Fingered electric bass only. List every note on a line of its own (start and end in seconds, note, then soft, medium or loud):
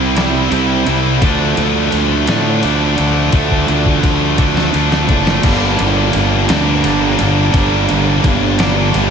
0.00 0.49 C2 medium
0.52 0.85 C2 loud
0.87 1.21 C2 medium
1.22 1.56 D2 medium
1.57 1.91 D2 loud
1.93 2.26 D2 medium
2.28 2.62 A2 medium
2.64 2.97 D2 medium
2.99 3.32 D2 loud
3.33 3.67 D2 medium
3.69 4.02 D2 medium
4.03 4.71 D2 medium
4.74 5.08 D2 medium
5.08 5.42 F#1 medium
5.44 5.77 G1 medium
5.80 6.13 G1 medium
6.14 6.48 G1 medium
6.50 6.83 D2 loud
6.85 7.18 G1 medium
7.21 7.53 G1 loud
7.54 7.87 G1 medium
7.91 8.24 G1 loud
8.24 8.91 G1 loud
8.95 9.10 G1 medium